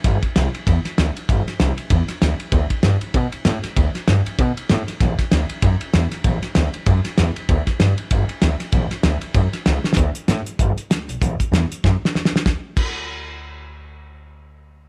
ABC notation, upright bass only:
X:1
M:4/4
L:1/8
Q:"Swing" 1/4=193
K:Dmix
V:1 name="Upright bass" clef=bass
G,,, z C,, z E,, z D,, z | G,,, z C,, z E,, z D,, z | D,, z G,, z B,, z A,, z | D,, z G,, z B,, z A,, z |
A,,, z D,, z F,, z E,, z | A,,, z D,, z F,, z E,, z | D,, z G,, z G,,, z D,, z | A,,, z D,, z F,, z ^C,, z |
D,, z A,, z G,,, z D,, B,,, | A,,, z E,, z F,, z E,, ^C,, | D,, z D,,6- | D,,8 |]